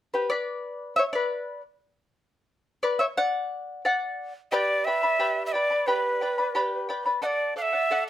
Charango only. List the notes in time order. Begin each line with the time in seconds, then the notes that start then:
0.14 G4 B4
0.30 B4 D5
0.96 C#5 E5
1.13 B4 D5
2.83 B4 D5
2.99 C#5 E5
3.17 D5 F#5
3.85 D5 F#5
4.52 G4 B4 D5 G5 B5
4.87 B4 D5 G5 B5
5.03 B4 D5 B5
5.19 G4 B4 D5 G5 B5
5.54 B4 D5 G5 B5
5.71 B4 D5 B5
5.88 G4 B4 D5 G5 B5
6.21 B4 D5 G5 B5
6.38 B4 D5 B5
6.55 G4 B4 D5 G5 B5
6.89 B4 D5 G5 B5
7.06 B4 D5 B5
7.22 A4 D5 F#5
7.56 A4 D5 F#5
7.73 D5 F#5
7.91 A4 D5 F#5